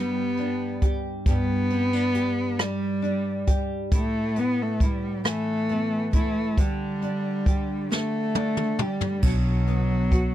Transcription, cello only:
0, 0, Header, 1, 2, 480
1, 0, Start_track
1, 0, Key_signature, 1, "major"
1, 0, Tempo, 885740
1, 684, Time_signature, 6, 3, 24, 8
1, 5607, End_track
2, 0, Start_track
2, 0, Title_t, "Cello"
2, 0, Program_c, 0, 42
2, 0, Note_on_c, 0, 59, 72
2, 443, Note_off_c, 0, 59, 0
2, 697, Note_on_c, 0, 59, 98
2, 1422, Note_on_c, 0, 55, 76
2, 1430, Note_off_c, 0, 59, 0
2, 1953, Note_off_c, 0, 55, 0
2, 2137, Note_on_c, 0, 57, 79
2, 2379, Note_on_c, 0, 59, 78
2, 2387, Note_off_c, 0, 57, 0
2, 2504, Note_on_c, 0, 57, 68
2, 2512, Note_off_c, 0, 59, 0
2, 2627, Note_on_c, 0, 55, 65
2, 2635, Note_off_c, 0, 57, 0
2, 2856, Note_off_c, 0, 55, 0
2, 2861, Note_on_c, 0, 57, 78
2, 3311, Note_off_c, 0, 57, 0
2, 3335, Note_on_c, 0, 57, 71
2, 3575, Note_on_c, 0, 55, 67
2, 3583, Note_off_c, 0, 57, 0
2, 4290, Note_off_c, 0, 55, 0
2, 4298, Note_on_c, 0, 57, 83
2, 4773, Note_on_c, 0, 55, 73
2, 4781, Note_off_c, 0, 57, 0
2, 5012, Note_on_c, 0, 54, 79
2, 5020, Note_off_c, 0, 55, 0
2, 5607, Note_off_c, 0, 54, 0
2, 5607, End_track
0, 0, End_of_file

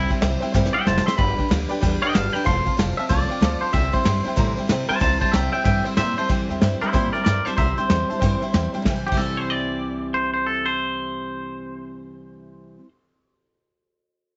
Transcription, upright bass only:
0, 0, Header, 1, 3, 480
1, 0, Start_track
1, 0, Key_signature, 0, "major"
1, 0, Tempo, 320513
1, 1769, Time_signature, 4, 2, 24, 8
1, 21510, End_track
2, 0, Start_track
2, 0, Title_t, "Upright bass"
2, 0, Program_c, 0, 32
2, 328, Note_on_c, 0, 36, 92
2, 593, Note_off_c, 0, 36, 0
2, 819, Note_on_c, 0, 43, 89
2, 1079, Note_off_c, 0, 43, 0
2, 1292, Note_on_c, 0, 29, 90
2, 1554, Note_off_c, 0, 29, 0
2, 1778, Note_on_c, 0, 31, 97
2, 2037, Note_off_c, 0, 31, 0
2, 2253, Note_on_c, 0, 38, 91
2, 2514, Note_off_c, 0, 38, 0
2, 2739, Note_on_c, 0, 40, 90
2, 2996, Note_off_c, 0, 40, 0
2, 3213, Note_on_c, 0, 31, 91
2, 3472, Note_off_c, 0, 31, 0
2, 3695, Note_on_c, 0, 29, 92
2, 3953, Note_off_c, 0, 29, 0
2, 4166, Note_on_c, 0, 29, 92
2, 4427, Note_off_c, 0, 29, 0
2, 4649, Note_on_c, 0, 36, 93
2, 4908, Note_off_c, 0, 36, 0
2, 5110, Note_on_c, 0, 38, 87
2, 5376, Note_off_c, 0, 38, 0
2, 5596, Note_on_c, 0, 36, 99
2, 5859, Note_off_c, 0, 36, 0
2, 6075, Note_on_c, 0, 43, 95
2, 6338, Note_off_c, 0, 43, 0
2, 6551, Note_on_c, 0, 45, 96
2, 6815, Note_off_c, 0, 45, 0
2, 7033, Note_on_c, 0, 48, 90
2, 7296, Note_off_c, 0, 48, 0
2, 7506, Note_on_c, 0, 36, 94
2, 7772, Note_off_c, 0, 36, 0
2, 7991, Note_on_c, 0, 36, 89
2, 8254, Note_off_c, 0, 36, 0
2, 8470, Note_on_c, 0, 43, 87
2, 8734, Note_off_c, 0, 43, 0
2, 8950, Note_on_c, 0, 46, 98
2, 9213, Note_off_c, 0, 46, 0
2, 9426, Note_on_c, 0, 36, 88
2, 9623, Note_off_c, 0, 36, 0
2, 9724, Note_on_c, 0, 40, 91
2, 9842, Note_off_c, 0, 40, 0
2, 9910, Note_on_c, 0, 43, 89
2, 10106, Note_off_c, 0, 43, 0
2, 10392, Note_on_c, 0, 46, 91
2, 10587, Note_off_c, 0, 46, 0
2, 10877, Note_on_c, 0, 43, 93
2, 11071, Note_off_c, 0, 43, 0
2, 11346, Note_on_c, 0, 36, 97
2, 11543, Note_off_c, 0, 36, 0
2, 11830, Note_on_c, 0, 40, 91
2, 12026, Note_off_c, 0, 40, 0
2, 12312, Note_on_c, 0, 43, 85
2, 12508, Note_off_c, 0, 43, 0
2, 12789, Note_on_c, 0, 40, 87
2, 12986, Note_off_c, 0, 40, 0
2, 13272, Note_on_c, 0, 36, 97
2, 13441, Note_off_c, 0, 36, 0
2, 13657, Note_on_c, 0, 36, 90
2, 19114, Note_off_c, 0, 36, 0
2, 21510, End_track
3, 0, Start_track
3, 0, Title_t, "Muted upright bass strokes"
3, 162, Note_on_c, 9, 29, 73
3, 312, Note_off_c, 9, 29, 0
3, 632, Note_on_c, 9, 29, 72
3, 782, Note_off_c, 9, 29, 0
3, 1112, Note_on_c, 9, 29, 70
3, 1262, Note_off_c, 9, 29, 0
3, 1601, Note_on_c, 9, 29, 73
3, 1751, Note_off_c, 9, 29, 0
3, 2083, Note_on_c, 9, 29, 73
3, 2233, Note_off_c, 9, 29, 0
3, 2562, Note_on_c, 9, 29, 74
3, 2712, Note_off_c, 9, 29, 0
3, 3045, Note_on_c, 9, 29, 71
3, 3195, Note_off_c, 9, 29, 0
3, 3509, Note_on_c, 9, 29, 68
3, 3658, Note_off_c, 9, 29, 0
3, 3993, Note_on_c, 9, 29, 74
3, 4143, Note_off_c, 9, 29, 0
3, 4472, Note_on_c, 9, 29, 71
3, 4622, Note_off_c, 9, 29, 0
3, 4943, Note_on_c, 9, 29, 69
3, 5093, Note_off_c, 9, 29, 0
3, 5409, Note_on_c, 9, 29, 73
3, 5558, Note_off_c, 9, 29, 0
3, 5899, Note_on_c, 9, 29, 72
3, 6049, Note_off_c, 9, 29, 0
3, 6381, Note_on_c, 9, 29, 72
3, 6530, Note_off_c, 9, 29, 0
3, 6863, Note_on_c, 9, 29, 71
3, 7013, Note_off_c, 9, 29, 0
3, 7332, Note_on_c, 9, 29, 69
3, 7481, Note_off_c, 9, 29, 0
3, 7804, Note_on_c, 9, 29, 72
3, 7954, Note_off_c, 9, 29, 0
3, 8288, Note_on_c, 9, 29, 76
3, 8438, Note_off_c, 9, 29, 0
3, 8779, Note_on_c, 9, 29, 75
3, 8929, Note_off_c, 9, 29, 0
3, 9254, Note_on_c, 9, 29, 72
3, 9403, Note_off_c, 9, 29, 0
3, 10213, Note_on_c, 9, 29, 73
3, 10362, Note_off_c, 9, 29, 0
3, 10693, Note_on_c, 9, 29, 73
3, 10842, Note_off_c, 9, 29, 0
3, 11182, Note_on_c, 9, 29, 73
3, 11332, Note_off_c, 9, 29, 0
3, 11667, Note_on_c, 9, 29, 67
3, 11817, Note_off_c, 9, 29, 0
3, 12142, Note_on_c, 9, 29, 68
3, 12292, Note_off_c, 9, 29, 0
3, 12615, Note_on_c, 9, 29, 70
3, 12764, Note_off_c, 9, 29, 0
3, 13096, Note_on_c, 9, 29, 73
3, 13246, Note_off_c, 9, 29, 0
3, 21510, End_track
0, 0, End_of_file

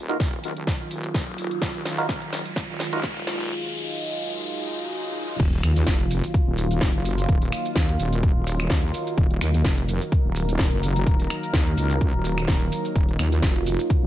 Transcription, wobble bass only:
0, 0, Header, 1, 2, 480
1, 0, Start_track
1, 0, Key_signature, -6, "minor"
1, 0, Tempo, 472441
1, 1644, Time_signature, 4, 2, 24, 8
1, 14293, End_track
2, 0, Start_track
2, 0, Title_t, "Wobble bass"
2, 0, Program_c, 0, 39
2, 0, Note_on_c, 0, 27, 95
2, 186, Note_off_c, 0, 27, 0
2, 203, Note_on_c, 0, 27, 96
2, 426, Note_off_c, 0, 27, 0
2, 443, Note_on_c, 0, 37, 94
2, 666, Note_off_c, 0, 37, 0
2, 924, Note_on_c, 0, 27, 98
2, 1274, Note_off_c, 0, 27, 0
2, 1295, Note_on_c, 0, 27, 97
2, 1514, Note_off_c, 0, 27, 0
2, 1643, Note_on_c, 0, 27, 97
2, 1866, Note_off_c, 0, 27, 0
2, 1884, Note_on_c, 0, 37, 94
2, 2234, Note_off_c, 0, 37, 0
2, 2255, Note_on_c, 0, 30, 99
2, 2474, Note_off_c, 0, 30, 0
2, 2736, Note_on_c, 0, 27, 96
2, 3067, Note_off_c, 0, 27, 0
2, 3083, Note_on_c, 0, 27, 98
2, 3306, Note_off_c, 0, 27, 0
2, 3324, Note_on_c, 0, 27, 99
2, 3564, Note_off_c, 0, 27, 0
2, 5484, Note_on_c, 0, 27, 96
2, 5707, Note_off_c, 0, 27, 0
2, 5725, Note_on_c, 0, 39, 93
2, 5947, Note_off_c, 0, 39, 0
2, 5964, Note_on_c, 0, 29, 96
2, 6314, Note_off_c, 0, 29, 0
2, 6576, Note_on_c, 0, 27, 97
2, 6907, Note_off_c, 0, 27, 0
2, 6924, Note_on_c, 0, 27, 100
2, 7034, Note_off_c, 0, 27, 0
2, 7056, Note_on_c, 0, 30, 99
2, 7387, Note_off_c, 0, 30, 0
2, 7403, Note_on_c, 0, 27, 98
2, 7626, Note_off_c, 0, 27, 0
2, 7884, Note_on_c, 0, 39, 98
2, 8107, Note_off_c, 0, 39, 0
2, 8125, Note_on_c, 0, 27, 94
2, 8475, Note_off_c, 0, 27, 0
2, 8497, Note_on_c, 0, 27, 96
2, 8827, Note_off_c, 0, 27, 0
2, 8844, Note_on_c, 0, 39, 100
2, 9067, Note_off_c, 0, 39, 0
2, 9324, Note_on_c, 0, 27, 93
2, 9547, Note_off_c, 0, 27, 0
2, 9564, Note_on_c, 0, 39, 93
2, 9787, Note_off_c, 0, 39, 0
2, 9803, Note_on_c, 0, 29, 97
2, 10154, Note_off_c, 0, 29, 0
2, 10415, Note_on_c, 0, 27, 99
2, 10747, Note_off_c, 0, 27, 0
2, 10764, Note_on_c, 0, 27, 101
2, 10874, Note_off_c, 0, 27, 0
2, 10896, Note_on_c, 0, 30, 97
2, 11227, Note_off_c, 0, 30, 0
2, 11243, Note_on_c, 0, 27, 96
2, 11466, Note_off_c, 0, 27, 0
2, 11723, Note_on_c, 0, 39, 99
2, 11946, Note_off_c, 0, 39, 0
2, 11964, Note_on_c, 0, 37, 98
2, 12315, Note_off_c, 0, 37, 0
2, 12336, Note_on_c, 0, 27, 96
2, 12667, Note_off_c, 0, 27, 0
2, 12684, Note_on_c, 0, 27, 97
2, 12907, Note_off_c, 0, 27, 0
2, 13164, Note_on_c, 0, 27, 97
2, 13387, Note_off_c, 0, 27, 0
2, 13405, Note_on_c, 0, 39, 96
2, 13627, Note_off_c, 0, 39, 0
2, 13644, Note_on_c, 0, 29, 98
2, 13994, Note_off_c, 0, 29, 0
2, 14256, Note_on_c, 0, 27, 98
2, 14293, Note_off_c, 0, 27, 0
2, 14293, End_track
0, 0, End_of_file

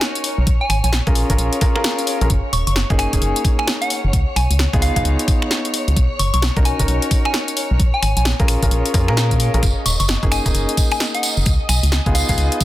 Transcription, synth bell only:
0, 0, Header, 1, 2, 480
1, 0, Start_track
1, 0, Key_signature, 6, "major"
1, 0, Tempo, 458015
1, 492, Time_signature, 4, 2, 24, 8
1, 13247, End_track
2, 0, Start_track
2, 0, Title_t, "Synth bell"
2, 0, Program_c, 0, 98
2, 639, Note_on_c, 0, 80, 84
2, 713, Note_off_c, 0, 80, 0
2, 730, Note_on_c, 0, 80, 79
2, 826, Note_off_c, 0, 80, 0
2, 879, Note_on_c, 0, 80, 69
2, 938, Note_off_c, 0, 80, 0
2, 2650, Note_on_c, 0, 85, 80
2, 2747, Note_off_c, 0, 85, 0
2, 2799, Note_on_c, 0, 85, 69
2, 2858, Note_off_c, 0, 85, 0
2, 3129, Note_on_c, 0, 80, 86
2, 3280, Note_off_c, 0, 80, 0
2, 3760, Note_on_c, 0, 80, 86
2, 3852, Note_off_c, 0, 80, 0
2, 3997, Note_on_c, 0, 78, 91
2, 4090, Note_off_c, 0, 78, 0
2, 4571, Note_on_c, 0, 80, 85
2, 4721, Note_off_c, 0, 80, 0
2, 5051, Note_on_c, 0, 77, 83
2, 5147, Note_off_c, 0, 77, 0
2, 5200, Note_on_c, 0, 77, 73
2, 5258, Note_off_c, 0, 77, 0
2, 6491, Note_on_c, 0, 85, 81
2, 6587, Note_off_c, 0, 85, 0
2, 6641, Note_on_c, 0, 85, 74
2, 6699, Note_off_c, 0, 85, 0
2, 6972, Note_on_c, 0, 80, 83
2, 7121, Note_off_c, 0, 80, 0
2, 7601, Note_on_c, 0, 80, 91
2, 7692, Note_off_c, 0, 80, 0
2, 8319, Note_on_c, 0, 80, 88
2, 8393, Note_off_c, 0, 80, 0
2, 8410, Note_on_c, 0, 80, 79
2, 8507, Note_off_c, 0, 80, 0
2, 8561, Note_on_c, 0, 80, 72
2, 8619, Note_off_c, 0, 80, 0
2, 10330, Note_on_c, 0, 85, 80
2, 10426, Note_off_c, 0, 85, 0
2, 10478, Note_on_c, 0, 85, 73
2, 10538, Note_off_c, 0, 85, 0
2, 10810, Note_on_c, 0, 80, 87
2, 10961, Note_off_c, 0, 80, 0
2, 11441, Note_on_c, 0, 80, 91
2, 11532, Note_off_c, 0, 80, 0
2, 11680, Note_on_c, 0, 78, 86
2, 11772, Note_off_c, 0, 78, 0
2, 12250, Note_on_c, 0, 80, 80
2, 12401, Note_off_c, 0, 80, 0
2, 12731, Note_on_c, 0, 77, 85
2, 12827, Note_off_c, 0, 77, 0
2, 12880, Note_on_c, 0, 77, 74
2, 12938, Note_off_c, 0, 77, 0
2, 13247, End_track
0, 0, End_of_file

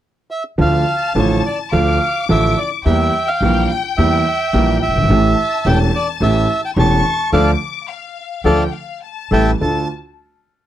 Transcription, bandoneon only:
0, 0, Header, 1, 2, 480
1, 0, Start_track
1, 0, Key_signature, -1, "minor"
1, 0, Tempo, 566038
1, 497, Time_signature, 4, 2, 24, 8
1, 3377, Tempo, 557621
1, 6737, Tempo, 570885
1, 9075, End_track
2, 0, Start_track
2, 0, Title_t, "Bandoneon"
2, 0, Program_c, 0, 23
2, 260, Note_on_c, 0, 76, 60
2, 367, Note_off_c, 0, 76, 0
2, 518, Note_on_c, 0, 77, 75
2, 957, Note_off_c, 0, 77, 0
2, 1003, Note_on_c, 0, 73, 61
2, 1217, Note_off_c, 0, 73, 0
2, 1238, Note_on_c, 0, 74, 64
2, 1343, Note_off_c, 0, 74, 0
2, 1461, Note_on_c, 0, 77, 74
2, 1908, Note_off_c, 0, 77, 0
2, 1956, Note_on_c, 0, 76, 74
2, 2185, Note_on_c, 0, 74, 62
2, 2195, Note_off_c, 0, 76, 0
2, 2291, Note_off_c, 0, 74, 0
2, 2420, Note_on_c, 0, 76, 73
2, 2777, Note_on_c, 0, 77, 75
2, 2789, Note_off_c, 0, 76, 0
2, 3140, Note_on_c, 0, 79, 72
2, 3148, Note_off_c, 0, 77, 0
2, 3247, Note_off_c, 0, 79, 0
2, 3370, Note_on_c, 0, 76, 80
2, 4058, Note_off_c, 0, 76, 0
2, 4101, Note_on_c, 0, 76, 82
2, 4826, Note_on_c, 0, 79, 81
2, 4838, Note_off_c, 0, 76, 0
2, 4931, Note_off_c, 0, 79, 0
2, 5075, Note_on_c, 0, 74, 76
2, 5179, Note_off_c, 0, 74, 0
2, 5310, Note_on_c, 0, 76, 76
2, 5639, Note_off_c, 0, 76, 0
2, 5673, Note_on_c, 0, 79, 74
2, 5723, Note_off_c, 0, 79, 0
2, 5795, Note_on_c, 0, 81, 85
2, 6232, Note_off_c, 0, 81, 0
2, 6258, Note_on_c, 0, 77, 78
2, 6258, Note_on_c, 0, 81, 75
2, 6261, Note_on_c, 0, 74, 76
2, 6411, Note_off_c, 0, 77, 0
2, 6411, Note_off_c, 0, 81, 0
2, 6412, Note_off_c, 0, 74, 0
2, 7213, Note_on_c, 0, 77, 73
2, 7215, Note_on_c, 0, 74, 76
2, 7217, Note_on_c, 0, 81, 73
2, 7366, Note_off_c, 0, 77, 0
2, 7368, Note_off_c, 0, 74, 0
2, 7368, Note_off_c, 0, 81, 0
2, 7951, Note_on_c, 0, 76, 73
2, 7951, Note_on_c, 0, 79, 75
2, 7951, Note_on_c, 0, 81, 78
2, 8101, Note_off_c, 0, 79, 0
2, 8102, Note_off_c, 0, 76, 0
2, 8102, Note_off_c, 0, 81, 0
2, 8196, Note_on_c, 0, 81, 69
2, 8413, Note_off_c, 0, 81, 0
2, 9075, End_track
0, 0, End_of_file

